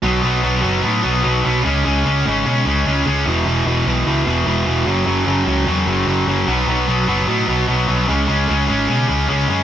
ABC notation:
X:1
M:4/4
L:1/8
Q:1/4=149
K:Bmix
V:1 name="Distorted electric guitar" clef=bass
[B,,F,B,] [B,,F,B,] [B,,F,B,] [B,,F,B,] [B,,F,B,] [B,,F,B,] [B,,F,B,] [B,,F,B,] | [C,G,C] [C,G,C] [C,G,C] [C,G,C] [C,G,C] [C,G,C] [C,G,C] [C,G,C] | [E,,B,,E,] [E,,B,,E,] [E,,B,,E,] [E,,B,,E,] [E,,B,,E,] [E,,B,,E,] [E,,B,,E,] [E,,B,,E,] | [F,,C,F,] [F,,C,F,] [F,,C,F,] [F,,C,F,] [F,,C,F,] [F,,C,F,] [F,,C,F,] [F,,C,F,] |
[B,,F,B,] [B,,F,B,] [B,,F,B,] [B,,F,B,] [B,,F,B,] [B,,F,B,] [B,,F,B,] [B,,F,B,] | [C,G,C] [C,G,C] [C,G,C] [C,G,C] [C,G,C] [C,G,C] [C,G,C] [C,G,C] |]
V:2 name="Distorted electric guitar" clef=bass
[B,,F,B,] [B,,F,B,] [B,,F,B,] [B,,F,B,] [B,,F,B,] [B,,F,B,] [B,,F,B,] [B,,F,B,] | [C,G,C] [C,G,C] [C,G,C] [C,G,C] [C,G,C] [C,G,C] [C,G,C] [C,G,C] | [E,,B,,E,] [E,,B,,E,] [E,,B,,E,] [E,,B,,E,] [E,,B,,E,] [E,,B,,E,] [E,,B,,E,] [E,,B,,E,] | [F,,C,F,] [F,,C,F,] [F,,C,F,] [F,,C,F,] [F,,C,F,] [F,,C,F,] [F,,C,F,] [F,,C,F,] |
[B,,F,B,] [B,,F,B,] [B,,F,B,] [B,,F,B,] [B,,F,B,] [B,,F,B,] [B,,F,B,] [B,,F,B,] | [C,G,C] [C,G,C] [C,G,C] [C,G,C] [C,G,C] [C,G,C] [C,G,C] [C,G,C] |]
V:3 name="Picked electric bass" clef=bass
B,,, B,,, B,,, F,,, A,, B,,, B,,, B,,, | C,, C,, C,, G,,, B,, C,, C,, C,, | E,,, E,,, E,,, B,,, C,, E,,, E,,, E,,, | F,,, F,,, F,,, C,, E,, F,,, F,,, F,,, |
B,,, B,,, B,,, F,,, A,, B,,, B,,, B,,, | C,, C,, C,, G,,, B,, C,, C,, F,, |]